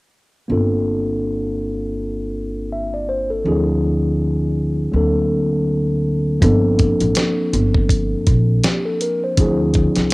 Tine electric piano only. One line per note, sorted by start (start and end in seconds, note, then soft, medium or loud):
0.48 3.41 A#3 medium
0.48 3.42 C4 medium
0.48 3.42 D4 medium
0.48 3.43 F4 medium
0.48 2.69 A4 medium
2.73 2.93 E5 medium
2.94 3.08 D5 medium
3.09 3.30 C5 medium
3.30 3.66 A4 medium
3.44 3.53 E3 medium
3.44 4.91 C4 medium
3.44 4.91 D4 medium
3.44 4.92 E4 medium
3.49 4.94 F3 medium
3.49 4.92 G#4 medium
4.92 6.38 F#3 medium
4.92 6.39 A#3 medium
4.92 6.39 C4 medium
4.92 6.40 D4 medium
4.96 6.40 A4 medium
6.40 9.33 F3 medium
6.40 9.34 A#3 medium
6.40 9.34 C4 medium
6.40 9.35 D4 medium
6.40 8.61 A4 medium
8.64 8.85 G4 medium
8.85 9.00 A4 medium
9.02 9.22 A#4 medium
9.24 9.59 C5 medium
9.36 9.45 E3 medium
9.36 10.14 C4 medium
9.36 10.14 D4 medium
9.36 10.14 E4 medium
9.41 10.14 F3 medium
9.41 10.14 G#4 medium